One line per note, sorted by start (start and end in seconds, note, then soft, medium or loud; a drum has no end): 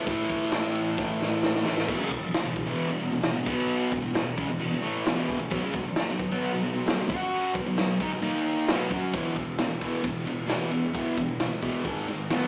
0.06 1.64 A2 loud
0.06 1.65 E3 loud
0.06 1.64 A3 loud
0.06 kick loud
0.06 ride loud
0.29 kick medium
0.29 ride medium
0.52 snare loud
0.52 ride medium
0.75 ride medium
0.98 kick loud
0.98 snare medium
1.22 snare medium
1.43 snare loud
1.55 snare medium
1.65 1.88 A2 medium
1.65 1.87 E3 medium
1.65 1.86 A3 medium
1.65 snare loud
1.77 snare loud
1.88 1.98 E2 medium
1.88 1.99 B2 loud
1.88 kick loud
1.88 crash loud
1.88 crash medium
1.99 2.09 F#2 medium
1.99 2.10 C#3 loud
2.11 2.22 E2 medium
2.11 2.22 B2 medium
2.11 kick medium
2.23 muted distorted electric guitar stroke medium
2.34 snare loud
2.34 crash medium
2.44 2.63 E2 medium
2.44 2.63 B2 medium
2.56 kick medium
2.66 2.87 E2 medium
2.66 2.87 B2 loud
2.66 2.89 E3 loud
2.78 crash medium
2.88 2.98 E2 medium
2.88 2.99 B2 medium
3.00 3.10 E2 medium
3.00 3.11 B2 medium
3.11 3.20 E2 medium
3.11 3.21 B2 medium
3.21 3.33 E2 medium
3.21 3.33 B2 medium
3.21 snare loud
3.21 crash medium
3.34 3.46 E2 medium
3.34 3.44 B2 medium
3.45 3.90 B2 medium
3.45 3.90 F#3 medium
3.45 3.91 B3 medium
3.45 kick loud
3.45 crash loud
3.69 crash medium
3.91 4.01 E2 medium
3.91 4.01 B2 medium
3.91 kick medium
4.02 4.13 E2 medium
4.02 4.13 B2 medium
4.14 4.32 E2 medium
4.14 4.32 B2 medium
4.14 snare loud
4.14 crash medium
4.37 4.48 C#3 medium
4.37 4.48 G#3 loud
4.37 kick medium
4.48 4.59 E2 medium
4.48 4.59 B2 medium
4.60 4.70 E2 medium
4.60 4.70 B2 medium
4.60 crash medium
4.71 4.83 E2 medium
4.71 4.81 B2 medium
4.82 5.04 A2 loud
4.82 5.04 E3 loud
4.82 5.05 A3 loud
5.06 5.15 E2 medium
5.06 5.15 B2 medium
5.06 snare loud
5.06 crash medium
5.16 5.38 E2 medium
5.16 5.38 B2 loud
5.16 5.38 E3 loud
5.29 kick medium
5.40 5.51 E2 medium
5.40 5.49 B2 medium
5.50 5.61 B2 medium
5.50 5.62 F#3 loud
5.50 kick loud
5.50 crash medium
5.63 5.73 C#3 loud
5.63 5.74 G#3 loud
5.74 5.86 B2 medium
5.74 5.86 F#3 medium
5.74 kick medium
5.88 muted distorted electric guitar stroke medium
5.96 snare loud
5.96 crash medium
6.09 6.26 B2 medium
6.09 6.26 F#3 medium
6.19 kick medium
6.31 6.52 B2 medium
6.31 6.52 F#3 loud
6.31 6.53 B3 loud
6.43 crash medium
6.53 6.63 B2 medium
6.53 6.63 F#3 medium
6.64 6.73 B2 medium
6.64 6.74 F#3 medium
6.74 6.84 B2 medium
6.74 6.84 F#3 medium
6.86 6.96 B2 medium
6.86 6.96 F#3 medium
6.86 snare loud
6.86 crash medium
6.97 7.08 B2 medium
6.97 7.08 F#3 medium
7.08 7.53 F#3 medium
7.08 7.53 C#4 medium
7.08 7.54 F#4 medium
7.08 kick loud
7.34 crash medium
7.53 7.65 B2 medium
7.53 7.65 F#3 medium
7.53 kick medium
7.66 7.77 B2 medium
7.66 7.78 F#3 medium
7.78 7.96 B2 medium
7.78 7.96 F#3 medium
7.78 snare loud
7.78 crash medium
8.00 8.11 G#3 medium
8.00 8.11 D#4 loud
8.00 kick medium
8.12 8.21 B2 medium
8.12 8.22 F#3 medium
8.22 8.67 D#3 loud
8.22 8.67 A#3 loud
8.22 8.67 D#4 loud
8.22 crash medium
8.68 8.90 B2 medium
8.68 8.89 F#3 loud
8.68 8.90 B3 loud
8.68 snare loud
8.68 crash medium
8.90 9.12 F#3 medium
8.90 9.13 C#4 loud
8.90 9.13 F#4 medium
8.90 kick medium
9.13 9.34 E2 loud
9.13 9.34 B2 medium
9.13 9.35 E3 loud
9.13 kick loud
9.13 ride medium
9.35 9.56 E2 medium
9.35 9.56 B2 medium
9.35 kick medium
9.35 ride medium
9.58 9.79 E2 medium
9.58 9.79 B2 medium
9.58 snare loud
9.58 ride medium
9.81 10.02 E2 medium
9.81 10.03 B2 medium
9.81 10.03 E3 loud
9.81 kick medium
9.81 ride medium
10.03 10.24 E2 medium
10.03 10.24 B2 medium
10.03 kick loud
10.03 ride loud
10.26 10.46 E2 medium
10.26 10.46 B2 medium
10.26 ride medium
10.47 10.69 E2 medium
10.47 10.70 B2 loud
10.47 10.70 E3 loud
10.47 snare loud
10.47 ride medium
10.70 10.91 E2 medium
10.70 10.92 B2 medium
10.70 ride medium
10.93 11.15 E2 medium
10.93 11.15 B2 medium
10.93 11.16 E3 loud
10.93 kick loud
10.93 ride medium
11.17 11.38 E2 medium
11.17 11.38 B2 medium
11.17 kick medium
11.17 ride medium
11.40 11.60 E2 medium
11.40 11.60 B2 medium
11.40 snare loud
11.40 ride loud
11.62 11.83 E2 medium
11.62 11.84 B2 loud
11.62 11.84 E3 loud
11.62 kick medium
11.62 ride medium
11.85 12.06 G#2 medium
11.85 12.06 D#3 loud
11.85 12.07 G#3 loud
11.85 kick loud
11.85 ride loud
12.08 12.28 G#2 medium
12.08 12.28 D#3 medium
12.08 snare soft
12.08 ride medium
12.30 12.47 B2 loud
12.30 12.47 F#3 medium
12.30 12.47 B3 loud
12.30 snare loud
12.30 ride loud